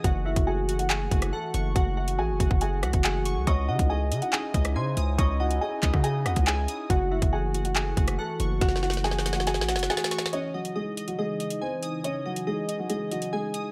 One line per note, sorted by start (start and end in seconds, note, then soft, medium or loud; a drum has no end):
0.00 3.43 E3 medium
0.04 0.35 F#1 loud
0.04 3.44 A3 medium
0.04 3.44 F#4 medium
0.04 0.25 F#4 loud
0.04 0.24 F#4 medium
0.04 0.23 F#5 medium
0.04 kick loud
0.04 closed hi-hat medium
0.25 0.45 E4 medium
0.25 0.46 F#4 medium
0.25 0.45 E5 medium
0.36 1.08 F#1 loud
0.36 kick loud
0.36 closed hi-hat medium
0.47 0.68 F#4 medium
0.47 0.78 G#4 medium
0.47 0.77 G#5 medium
0.69 0.89 F#4 medium
0.69 closed hi-hat medium
0.79 0.89 F#4 medium
0.79 0.89 F#5 medium
0.79 closed hi-hat medium
0.90 1.10 F#4 medium
0.90 1.31 G#4 medium
0.90 1.30 G#5 loud
0.90 clap loud
1.11 1.32 F#1 loud
1.11 1.75 F#4 medium
1.11 kick loud
1.11 closed hi-hat medium
1.22 cross-stick loud
1.22 closed hi-hat medium
1.33 1.73 A4 medium
1.33 2.40 F#5 medium
1.33 1.73 A5 medium
1.54 1.75 F#1 loud
1.54 2.61 C#6 medium
1.54 closed hi-hat medium
1.75 2.20 F#1 loud
1.75 1.96 F#4 loud
1.75 1.95 F#4 medium
1.75 1.95 F#5 medium
1.75 kick loud
1.75 closed hi-hat medium
1.97 2.17 F#4 medium
1.97 2.16 F#5 medium
2.08 closed hi-hat medium
2.18 2.31 A1 loud
2.18 2.39 F#4 medium
2.18 2.49 G#4 medium
2.18 2.49 G#5 loud
2.29 2.39 F#1 loud
2.40 2.50 F#1 loud
2.40 2.60 F#4 medium
2.40 kick medium
2.40 closed hi-hat medium
2.50 2.84 F#1 loud
2.50 2.61 F#4 medium
2.50 2.60 F#5 medium
2.50 kick loud
2.61 2.82 F#4 medium
2.61 2.81 G#4 medium
2.61 2.81 G#5 medium
2.61 closed hi-hat medium
2.83 2.93 C#2 loud
2.83 3.47 F#4 medium
2.83 3.02 F#4 medium
2.83 3.02 F#5 medium
2.83 cross-stick loud
2.83 closed hi-hat medium
2.93 3.38 F#1 loud
2.93 kick medium
2.93 closed hi-hat medium
3.04 3.45 G#4 medium
3.04 3.47 F#5 medium
3.04 3.45 G#5 medium
3.04 clap loud
3.25 3.47 C#6 medium
3.25 closed hi-hat medium
3.36 3.47 C#2 loud
3.47 3.70 C#2 loud
3.47 6.87 C#4 medium
3.47 6.87 D#4 medium
3.47 6.87 E4 medium
3.47 3.67 C#5 medium
3.47 3.67 D#5 loud
3.47 3.67 C#6 loud
3.47 kick loud
3.47 closed hi-hat medium
3.68 3.79 C#3 loud
3.68 3.88 F#4 medium
3.68 3.89 D#5 medium
3.68 3.88 F#5 medium
3.79 4.13 C#2 loud
3.79 kick loud
3.79 closed hi-hat medium
3.90 4.20 G#4 medium
3.90 4.10 D#5 medium
3.90 4.20 G#5 medium
4.11 4.22 C#3 loud
4.11 4.32 D#5 medium
4.11 closed hi-hat medium
4.22 4.32 F#4 medium
4.22 4.32 F#5 medium
4.22 closed hi-hat medium
4.33 4.74 G#4 medium
4.33 4.53 D#5 medium
4.33 4.73 G#5 loud
4.33 clap loud
4.54 4.77 C#2 loud
4.54 5.17 D#5 medium
4.54 kick loud
4.54 closed hi-hat medium
4.65 cross-stick loud
4.65 closed hi-hat medium
4.76 4.96 C#3 loud
4.76 5.17 C5 medium
4.76 5.83 G#5 medium
4.76 5.16 C6 medium
4.97 5.18 C#2 loud
4.97 6.04 D#6 medium
4.97 closed hi-hat medium
5.18 5.60 C#2 loud
5.18 5.38 C#5 medium
5.18 5.39 D#5 loud
5.18 5.38 C#6 medium
5.18 kick loud
5.18 closed hi-hat medium
5.40 5.60 F#4 medium
5.40 5.60 D#5 medium
5.40 5.59 F#5 medium
5.51 closed hi-hat medium
5.61 5.92 G#4 medium
5.61 5.82 D#5 medium
5.61 5.92 G#5 medium
5.83 5.93 C#2 loud
5.83 6.03 D#5 medium
5.83 kick medium
5.83 clap medium
5.83 closed hi-hat medium
5.94 6.27 C#3 loud
5.94 6.04 F#4 medium
5.94 6.03 F#5 medium
5.94 kick loud
5.94 cross-stick medium
6.04 6.24 G#4 medium
6.04 6.25 D#5 medium
6.04 6.23 G#5 medium
6.04 closed hi-hat medium
6.26 6.36 E2 loud
6.26 6.46 F#4 medium
6.26 6.90 D#5 medium
6.26 6.45 F#5 medium
6.26 cross-stick loud
6.26 closed hi-hat medium
6.36 6.67 C#2 loud
6.36 kick medium
6.36 closed hi-hat medium
6.47 6.88 G#4 medium
6.47 6.87 G#5 medium
6.47 6.90 G#5 medium
6.47 clap loud
6.68 6.90 D#6 medium
6.68 closed hi-hat medium
6.90 7.21 F#1 loud
6.90 10.29 E3 medium
6.90 10.29 A3 medium
6.90 10.29 F#4 medium
6.90 7.10 F#4 medium
6.90 7.09 F#5 medium
6.90 kick loud
6.90 closed hi-hat medium
7.11 7.31 E4 medium
7.11 7.31 F#4 medium
7.11 7.31 E5 medium
7.22 7.94 F#1 loud
7.22 kick loud
7.22 closed hi-hat medium
7.33 7.53 F#4 medium
7.33 7.63 G#4 medium
7.33 7.63 G#5 medium
7.54 7.75 F#4 medium
7.54 closed hi-hat medium
7.65 7.75 F#4 medium
7.65 7.75 F#5 medium
7.65 closed hi-hat medium
7.76 7.96 F#4 medium
7.76 8.16 G#4 medium
7.76 8.16 G#5 loud
7.76 clap loud
7.97 8.18 F#1 loud
7.97 8.60 F#4 medium
7.97 kick loud
7.97 closed hi-hat medium
8.08 cross-stick loud
8.08 closed hi-hat medium
8.18 8.59 A4 medium
8.18 9.26 F#5 medium
8.18 8.59 A5 medium
8.40 8.61 F#1 loud
8.40 9.47 C#6 medium
8.40 closed hi-hat medium
8.61 9.59 F#1 loud
8.61 8.82 F#4 loud
8.61 8.81 F#4 medium
8.61 8.81 F#5 medium
8.61 kick loud
8.61 snare medium
8.61 closed hi-hat medium
8.69 snare medium
8.76 snare medium
8.83 9.03 F#4 medium
8.83 9.02 F#5 medium
8.83 snare medium
8.90 snare medium
8.90 closed hi-hat medium
8.97 snare medium
9.04 9.24 F#4 medium
9.04 9.35 G#4 medium
9.04 9.35 G#5 medium
9.04 snare medium
9.11 snare medium
9.19 snare medium
9.26 9.46 F#4 medium
9.26 snare medium
9.26 closed hi-hat medium
9.33 9.46 F#5 medium
9.33 snare medium
9.37 9.46 F#4 medium
9.37 snare medium
9.47 9.67 F#4 medium
9.47 9.67 G#4 medium
9.47 9.66 G#5 medium
9.47 snare medium
9.47 closed hi-hat medium
9.54 9.75 A1 loud
9.54 snare medium
9.61 snare loud
9.68 10.33 F#4 medium
9.68 9.88 F#4 medium
9.68 9.88 F#5 medium
9.68 snare medium
9.68 closed hi-hat medium
9.74 9.89 F#1 loud
9.74 snare loud
9.79 snare medium
9.79 closed hi-hat medium
9.90 10.31 G#4 medium
9.90 10.33 F#5 medium
9.90 10.30 G#5 medium
9.90 snare loud
9.97 snare medium
10.04 snare loud
10.11 10.33 C#6 medium
10.11 snare loud
10.11 closed hi-hat medium
10.19 snare loud
10.26 snare loud
10.33 13.72 C#3 medium
10.33 13.72 E3 medium
10.33 10.53 C#4 medium
10.33 13.72 D#4 medium
10.33 10.52 C#5 loud
10.33 10.53 D#5 medium
10.33 closed hi-hat medium
10.54 10.74 F#3 medium
10.54 10.73 F#4 medium
10.54 10.74 D#5 medium
10.65 closed hi-hat medium
10.75 11.06 G#3 medium
10.75 11.06 G#4 medium
10.75 10.96 D#5 medium
10.97 11.17 D#5 medium
10.97 closed hi-hat medium
11.08 11.18 F#3 medium
11.08 11.17 F#4 medium
11.08 closed hi-hat medium
11.19 11.59 G#3 medium
11.19 11.59 G#4 medium
11.19 11.39 D#5 medium
11.40 12.03 D#5 medium
11.40 closed hi-hat medium
11.50 closed hi-hat medium
11.61 12.02 C4 medium
11.61 12.02 C5 medium
11.61 12.69 G#5 medium
11.83 12.90 D#6 medium
11.83 closed hi-hat medium
12.04 12.24 C#4 medium
12.04 12.23 C#5 medium
12.04 12.24 D#5 medium
12.04 closed hi-hat medium
12.26 12.45 F#3 medium
12.26 12.45 F#4 medium
12.26 12.46 D#5 medium
12.36 closed hi-hat medium
12.47 12.78 G#3 medium
12.47 12.77 G#4 medium
12.47 12.67 D#5 medium
12.68 12.89 D#5 medium
12.68 closed hi-hat medium
12.79 12.89 F#3 medium
12.79 12.89 F#4 medium
12.89 13.09 G#3 medium
12.89 13.09 G#4 medium
12.89 13.10 D#5 medium
12.89 closed hi-hat medium
13.11 13.31 F#3 medium
13.11 13.31 F#4 medium
13.11 13.72 D#5 medium
13.11 closed hi-hat medium
13.22 closed hi-hat medium
13.33 13.72 G#3 medium
13.33 13.72 G#4 medium
13.33 13.72 G#5 medium
13.54 13.72 D#6 medium
13.54 closed hi-hat medium